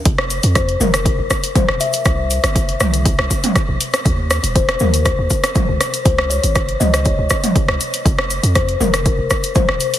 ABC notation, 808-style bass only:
X:1
M:4/4
L:1/16
Q:1/4=120
K:Cphr
V:1 name="808-style bass" clef=bass
F,,,3 F,,3 F,,,3 F,,, z3 E,,, z2 | C,,3 G,,,3 C,,3 C,, z3 B,,, z2 | E,,3 E,,,3 E,,3 E,, z3 D,, z2 | D,,3 A,,,3 D,,3 D,, z3 D,, z2 |
F,,,3 F,,3 F,,,3 F,,, z3 E,,, z2 |]